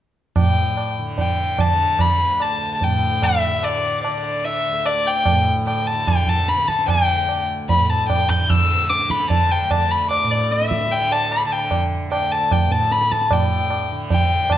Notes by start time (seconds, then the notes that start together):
0.36 A2 G5, tabla na, tabla ge
0.77 tabla na
0.99 D3
1.18 G5, tabla tin, tabla ge
1.59 D3 A5, tabla na, tabla ge
1.99 B5, tabla na, tabla ge
2.22 D2
2.40 A5, tabla na
2.74 A5
2.81 A2 G5, tabla tin, tabla ge
3.22 E5, tabla na, tabla ge
3.46 D3
3.63 D5, tabla na
4.04 D5, tabla na
4.08 D3
4.45 E5, tabla tin
4.69 D2
4.86 D5, tabla na
5.07 G5
5.26 tabla na, tabla ge
5.31 A2
5.67 G5, tabla na
5.87 A5
5.93 D3
6.07 G5, tabla na, tabla ge
6.27 A5, tabla ge
6.48 B5, tabla te
6.55 D3, tabla te
6.68 A5, tabla ke
6.79 tabla te
6.88 G5, tabla na, tabla ge
7.16 D2
7.29 tabla na
7.69 B5, tabla tin, tabla ge
7.78 A2
7.84 B5
7.89 A5
8.09 G5, tabla na, tabla ge
8.29 G6, tabla ge
8.40 D3
8.50 E6, tabla na, tabla ge
8.89 D6, tabla te
9.00 D3, tabla te
9.10 B5, tabla ke
9.20 tabla te
9.30 A5, tabla tin, tabla ge
9.51 G5
9.62 D2
9.70 A5, tabla na, tabla ge
9.91 B5
10.11 D6, tabla na
10.24 A2
10.31 D5
10.51 E5, tabla te
10.62 tabla te
10.71 tabla ke
10.81 D3, tabla te
10.91 G5, tabla tin
11.12 A5, tabla na
11.31 B5, tabla na
11.46 D3 A5
11.52 G5
11.71 tabla na, tabla ge
12.07 D2
12.12 G5, tabla na
12.32 A5
12.51 G5, tabla na, tabla ge
12.66 A2
12.71 A5, tabla te
12.91 B5, tabla te
13.02 tabla te
13.11 A5, tabla ke
13.21 tabla te
13.31 A2 G5, tabla na, tabla ge
13.70 tabla na
13.92 D3
14.10 G5, tabla tin, tabla ge
14.50 D3 A5, tabla na, tabla ge